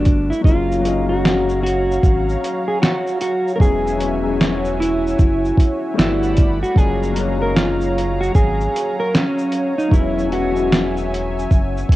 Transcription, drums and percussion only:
0.05 kick medium
0.05 closed hi-hat medium
0.05 shaker soft
0.32 shaker soft
0.44 kick loud
0.44 shaker medium
0.72 shaker soft
0.85 closed hi-hat medium
0.85 shaker medium
1.25 snare loud
1.25 shaker soft
1.49 shaker soft
1.67 closed hi-hat medium
1.67 shaker soft
1.92 shaker soft
2.03 kick medium
2.03 shaker medium
2.29 shaker soft
2.44 closed hi-hat medium
2.44 shaker soft
2.83 snare loud
2.83 shaker medium
3.07 shaker soft
3.21 closed hi-hat medium
3.21 shaker soft
3.48 shaker soft
3.60 kick loud
3.60 shaker medium
3.87 shaker soft
4.00 closed hi-hat medium
4.00 shaker soft
4.41 snare loud
4.41 shaker soft
4.65 shaker soft
4.82 closed hi-hat medium
4.82 shaker soft
5.07 shaker soft
5.19 kick loud
5.19 shaker medium
5.45 shaker soft
5.57 kick medium
5.57 closed hi-hat medium
5.57 shaker soft
5.99 snare loud
5.99 shaker medium
6.23 shaker soft
6.37 kick loud
6.37 closed hi-hat medium
6.37 shaker medium
6.64 shaker soft
6.76 kick loud
6.76 shaker medium
7.03 shaker soft
7.16 closed hi-hat medium
7.16 shaker soft
7.57 snare medium
7.57 shaker medium
7.81 shaker soft
7.98 closed hi-hat medium
7.98 shaker soft
8.23 shaker soft
8.35 kick medium
8.35 shaker medium
8.61 shaker soft
8.76 closed hi-hat medium
8.76 shaker medium
9.15 snare loud
9.15 shaker medium
9.38 shaker soft
9.52 closed hi-hat medium
9.52 shaker soft
9.79 shaker soft
9.92 kick loud
9.92 shaker medium
10.19 shaker soft
10.32 closed hi-hat medium
10.32 shaker soft
10.56 shaker soft
10.72 snare loud
10.72 shaker medium
10.97 shaker soft
11.14 closed hi-hat medium
11.14 shaker soft
11.39 shaker soft
11.51 kick medium
11.51 shaker medium
11.77 shaker soft
11.89 kick medium
11.89 closed hi-hat medium
11.89 shaker medium

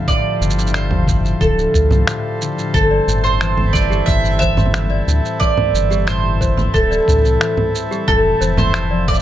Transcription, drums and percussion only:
0.08 kick loud
0.08 shaker soft
0.42 shaker medium
0.50 shaker medium
0.59 shaker medium
0.67 shaker soft
0.74 finger snap medium
0.74 shaker soft
0.91 low conga medium
1.08 kick loud
1.08 shaker medium
1.25 shaker soft
1.41 kick loud
1.41 shaker soft
1.59 shaker soft
1.74 kick medium
1.74 shaker medium
1.91 low conga medium
1.91 shaker soft
2.07 finger snap loud
2.07 shaker soft
2.42 shaker medium
2.59 shaker soft
2.74 kick loud
2.74 shaker soft
3.09 shaker medium
3.25 shaker soft
3.41 finger snap loud
3.41 shaker soft
3.58 low conga medium
3.74 kick loud
3.74 shaker medium
3.92 shaker soft
4.08 kick loud
4.08 shaker soft
4.25 shaker soft
4.41 kick medium
4.41 shaker medium
4.57 low conga medium
4.57 shaker soft
4.66 low conga medium
4.74 finger snap medium
4.74 low conga soft
4.74 shaker soft
4.82 low conga soft
5.08 shaker medium
5.25 shaker soft
5.41 kick loud
5.41 shaker soft
5.57 low conga medium
5.75 shaker medium
5.92 shaker soft
6.08 finger snap medium
6.08 shaker soft
6.41 kick medium
6.41 shaker medium
6.58 low conga medium
6.58 shaker soft
6.74 kick loud
6.74 shaker soft
6.92 shaker soft
7.08 kick medium
7.08 shaker medium
7.25 shaker soft
7.41 finger snap loud
7.41 shaker soft
7.57 low conga medium
7.75 shaker medium
7.92 shaker soft
8.08 kick loud
8.08 shaker soft
8.42 shaker medium
8.58 low conga medium
8.58 shaker soft
8.74 finger snap loud
8.74 shaker soft
9.08 kick medium
9.08 shaker soft
9.14 shaker soft

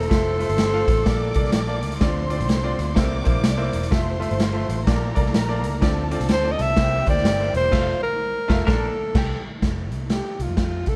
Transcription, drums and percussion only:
0.03 closed hi-hat soft
0.11 kick loud
0.11 snare loud
0.11 closed hi-hat medium
0.40 closed hi-hat medium
0.49 closed hi-hat medium
0.58 snare loud
0.58 closed hi-hat medium
0.88 kick loud
0.88 closed hi-hat medium
1.06 kick loud
1.06 snare loud
1.06 closed hi-hat medium
1.34 kick medium
1.34 closed hi-hat medium
1.45 snare soft
1.52 snare loud
1.52 closed hi-hat loud
1.83 closed hi-hat medium
1.92 closed hi-hat medium
2.01 kick loud
2.01 snare loud
2.01 closed hi-hat medium
2.30 closed hi-hat medium
2.40 closed hi-hat medium
2.49 snare loud
2.49 closed hi-hat medium
2.79 closed hi-hat medium
2.96 kick medium
2.96 snare loud
2.96 closed hi-hat medium
3.25 kick medium
3.25 closed hi-hat medium
3.44 snare loud
3.44 closed hi-hat loud
3.73 closed hi-hat medium
3.83 closed hi-hat medium
3.92 kick loud
3.92 snare loud
3.92 closed hi-hat medium
4.22 closed hi-hat medium
4.31 closed hi-hat medium
4.40 snare loud
4.40 closed hi-hat medium
4.69 closed hi-hat medium
4.87 kick loud
4.87 snare loud
4.87 closed hi-hat medium
5.16 kick medium
5.16 closed hi-hat medium
5.26 snare soft
5.34 snare loud
5.34 closed hi-hat loud
5.64 closed hi-hat medium
5.82 kick loud
5.82 snare loud
5.82 closed hi-hat medium
6.11 closed hi-hat medium
6.21 closed hi-hat medium
6.29 snare medium
6.29 closed hi-hat loud
6.59 closed hi-hat medium
6.77 kick medium
6.77 snare loud
6.77 closed hi-hat medium
7.07 kick medium
7.07 closed hi-hat medium
7.17 snare soft
7.25 snare medium
7.25 closed hi-hat loud
7.54 closed hi-hat medium
7.73 kick loud
7.73 snare loud
7.73 crash medium
8.50 kick loud
8.50 snare loud
8.68 kick loud
8.68 snare loud
9.15 kick loud
9.15 snare loud
9.15 crash medium
9.62 kick medium
9.62 snare loud
9.62 closed hi-hat medium
9.92 closed hi-hat medium
10.10 snare loud
10.10 closed hi-hat medium
10.40 closed hi-hat medium
10.57 kick medium
10.57 snare loud
10.57 closed hi-hat medium
10.86 kick medium
10.86 closed hi-hat medium

